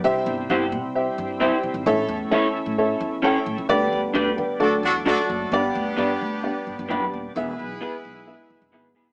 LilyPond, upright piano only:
<<
  \new Staff \with { instrumentName = "Upright piano" } { \time 4/4 \key g \major \tempo 4 = 131 << { r1 | r1 | r4 <fis' d''>8 <b' g''>4 r4. | r1 |
r1 | } \\ { <g' c'' e''>8 r8 <g' c'' fis''>8 r8 <g' c'' e''>8 r8 <g' c'' e''>8 r8 | <a' cis'' e''>8 r8 <a' cis'' e''>8 r8 <a' cis'' e''>8 r8 <a' cis'' g''>8 r8 | <g' b' d''>8 r4. <fis' a' d''>8 r8 <fis' a' d''>8 r8 | <b d' g' d''>8 r8 <b d' g' d''>8 r8 <b d' g' d''>8 r8 <b d' g' d''>8 r8 |
<b e' gis' e''>8 r8 <b e' gis' e''>8 r8 <b e' gis' e''>8 r8 <b e' gis' e''>8 r8 | } >> }
  \new Staff \with { instrumentName = "Upright piano" } { \clef bass \time 4/4 \key g \major c4. r2 r8 | a,4. r2 r8 | d4. r8 d4. r8 | g,4. r2 r8 |
e4. r2 r8 | }
>>